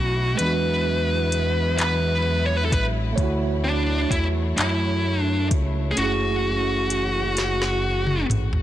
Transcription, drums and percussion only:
0.39 closed hi-hat
1.32 closed hi-hat
1.79 clap, closed hi-hat
2.72 kick, closed hi-hat
3.18 kick, closed hi-hat
4.11 kick, closed hi-hat
4.58 clap, closed hi-hat
5.51 kick, closed hi-hat
5.97 closed hi-hat
6.90 closed hi-hat
7.37 snare, closed hi-hat
7.62 snare
8.07 mid tom
8.30 closed hi-hat, mid tom
8.53 floor tom

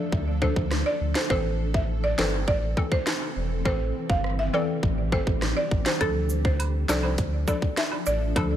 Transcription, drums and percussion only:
0.12 kick
0.42 kick
0.56 kick
0.71 cross-stick, snare
1.15 snare, clap
1.30 kick
1.74 kick
2.19 snare, clap
2.48 kick
2.77 kick
2.92 kick
3.07 cross-stick, snare, clap
3.65 kick
4.10 kick
4.24 cross-stick
4.83 kick
5.12 kick
5.27 kick
5.42 cross-stick, snare
5.71 kick
5.86 snare, clap
6.01 kick, closed hi-hat, high woodblock
6.30 cabasa
6.45 kick
6.60 closed hi-hat, high woodblock
6.89 snare, clap, cabasa
7.03 high woodblock
7.18 kick, closed hi-hat
7.48 kick, cabasa, high woodblock
7.62 kick
7.77 cross-stick, snare, clap, closed hi-hat
7.92 high woodblock
8.06 cabasa
8.36 kick, closed hi-hat, high woodblock

